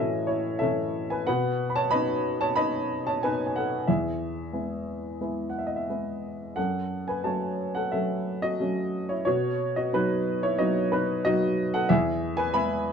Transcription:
grand piano
Already playing: A2 E3 A3 C#4 E4 F#4 G#4 A4 C#5 D#5 E5
0.27 E4 C#5
0.59 E3 A3 C#4 A4 E5
1.10 B4 G#5
1.27 B2 B4 F#5
1.70 B5
1.76 C#5 A5
1.91 B3 C#4 D#4 D#5 B5
2.41 C#5 A5
2.56 B3 C#4 D#4 D#5 B5
3.07 C#5 A5
3.23 B3 C#4 D#4 B4 G#5
3.47 G#5
3.56 A4 F#5
3.87 E2 G#4 E5
4.53 G#3 B3 E4
5.21 G#3 B3 E4
5.50 F#5
5.58 E5
5.67 D#5
5.76 E5
5.89 G#3 B3 E4
6.56 F#2 A4 F#5
7.08 B4 G#5
7.24 F#3 A3 C#4 C#5 A5
7.75 A4 F#5
7.92 F#3 A3 C#4 A4 E5
8.42 F#4 D#5
8.60 F#3 A3 C#4
9.09 E4 C#5
9.25 B2 F#4 C#5
9.76 F#4 D#5
9.93 F#3 B3 D#4 B4
10.43 E4 C#5
10.59 F#3 B3 D#4 F#4 D#5
10.92 D#4 B4
11.25 F#3 B3 D#4 F#4 D#5
11.74 A4 F#5
11.89 E2 G#4 E5
12.37 B4 G#5
12.54 G#3 B3 E4 E5 B5

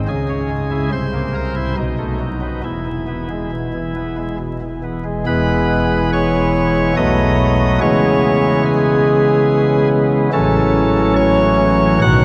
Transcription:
pipe organ
0.08 C#2 C#3 G#4
0.29 C#4
0.50 G#3
0.71 E4
0.92 C2 C3 C5
1.14 A#3
1.35 A#4
1.55 E4
1.77 B1 B2 D#4
1.98 A3
2.20 F#3
2.41 B3
2.64 E1 E2 E4
2.86 E3
3.08 B3
3.30 G#3
3.52 B2
3.73 E3
3.96 B3
4.17 G#3
4.39 B2
4.61 E3
4.83 B3
5.05 G#3
5.26 E1 E2 E3 G#3 B3 B4
6.13 C#5
6.96 B1 B2 F#3 A3 B3 D#5
7.81 C#3 E3 G#3 B3 C#5
8.65 G#4
10.33 A1 A2 E3 F#3 C#4 A4
11.16 C#5
12.02 B1 B2 D#3 F#3 F#4 F#5

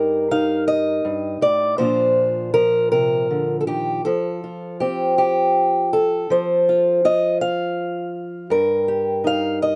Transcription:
steel-string acoustic guitar
Already playing: G2 D#4 G4 A#4
0.31 D#4 F5
0.68 D#5
1.05 G2
1.41 A2 D5
1.78 A#2 F3 D4 F4 C5
2.54 F3 A#4
2.92 C3 A#4
3.30 D3
3.61 A4
3.67 D#3 G4
4.05 F3 A4
4.44 F4
4.80 C4 G4
5.18 G4
5.93 A4
6.30 F3 C5
6.69 F4
7.05 F4 D#5
7.41 F5
8.50 G2 A#4
8.88 G4
9.24 D#4 F5
9.62 D#5

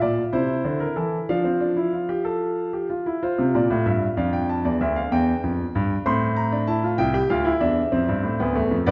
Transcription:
grand piano
Already playing: F4
0.01 A#2 D5
0.33 C3 E4 C5
0.65 D3
0.80 A#4
0.96 E3 A4
1.29 F3 D4 F5
1.44 C4
1.60 D4
1.77 E4
1.93 F4
2.09 G4
2.25 A4
2.73 G4
2.90 F4
3.06 E4
3.23 F4 C5
3.38 C3
3.55 A#2 D5
3.70 A2
3.86 G2 E5
4.17 F2 D4 F5
4.33 G5
4.49 A5
4.65 E2 D5
4.81 D2 E5
4.96 F5
5.12 E2 G5
5.44 F2
5.75 G2
6.06 A2 C4 C6
6.36 A#5
6.52 D4
6.67 E4 A5
6.84 F4
6.98 C2 E4 G5
7.14 G4
7.30 D2 F4 F5
7.45 E4
7.61 E2 D4 E5
7.92 F2 C4
8.09 G2
8.24 A2
8.40 D2 B3
8.55 E2 A3
8.71 F2
8.86 G2 B3 D5

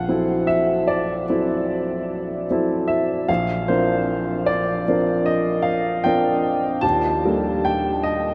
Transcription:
grand piano
Already playing: A#1 F#5
0.08 F#3 C4 E4 A4
0.47 E5
0.88 D5
1.29 F#3 C4 E4 A4
2.50 F#3 C4 E4 A4
2.88 E5
3.28 A#1 F5
3.68 F3 C4 D4 A#4 C5
4.46 D5
4.88 F3 C4 D4 A#4
5.26 D#5
5.62 F5
6.04 F3 C4 D4 A#4 G5
6.81 D#2 A5
7.25 G3 A#3 D4 A4
7.65 G5
8.03 D#5

